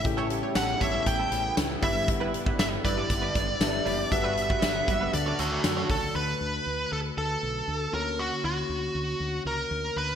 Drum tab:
HH |x-x-x-x-x-x-x-o-|x-x-x-x-x-x-x-o-|x-x-x-x-x-x-x-o-|----------------|
TB |----x-------x---|----x-------x---|----x-------x---|----------------|
SD |----o-------o---|----o-------o---|----o-------o---|----------------|
BD |o-----o-o-----o-|o--o--o-o-o-----|o--o--o-------o-|----------------|

HH |----------------|
TB |----------------|
SD |----------------|
BD |----------------|